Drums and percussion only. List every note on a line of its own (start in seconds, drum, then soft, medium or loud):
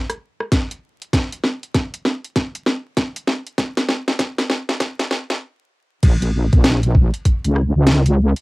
0.10 cross-stick soft
0.10 closed hi-hat medium
0.41 cross-stick medium
0.52 kick medium
0.52 snare medium
0.52 closed hi-hat medium
0.71 closed hi-hat medium
1.02 closed hi-hat soft
1.13 kick medium
1.13 snare medium
1.13 closed hi-hat medium
1.33 closed hi-hat medium
1.44 snare medium
1.63 closed hi-hat soft
1.74 kick loud
1.74 snare medium
1.74 closed hi-hat medium
1.94 closed hi-hat medium
2.05 snare medium
2.24 closed hi-hat soft
2.36 kick loud
2.36 snare medium
2.36 closed hi-hat medium
2.55 closed hi-hat medium
2.66 snare medium
2.97 kick medium
2.97 snare medium
2.97 closed hi-hat medium
3.16 closed hi-hat medium
3.27 snare medium
3.47 closed hi-hat soft
3.58 kick loud
3.58 snare medium
3.58 closed hi-hat medium
3.77 snare medium
3.77 closed hi-hat medium
3.89 snare medium
4.08 snare medium
4.08 closed hi-hat soft
4.19 kick loud
4.19 snare medium
4.19 closed hi-hat medium
4.38 snare medium
4.38 closed hi-hat medium
4.50 snare loud
4.69 snare medium
4.69 closed hi-hat soft
4.80 kick loud
4.80 snare loud
4.80 closed hi-hat medium
4.99 snare medium
4.99 closed hi-hat medium
5.11 snare loud
5.30 snare loud
5.30 closed hi-hat soft
6.03 kick loud
6.03 closed hi-hat medium
6.03 crash loud
6.22 closed hi-hat medium
6.53 kick loud
6.53 closed hi-hat soft
6.64 snare loud
6.64 closed hi-hat medium
6.83 closed hi-hat medium
6.95 kick loud
7.14 closed hi-hat soft
7.25 kick medium
7.25 closed hi-hat medium
7.45 closed hi-hat medium
7.56 cross-stick soft
7.87 snare loud
7.87 closed hi-hat medium
8.06 closed hi-hat medium
8.36 closed hi-hat soft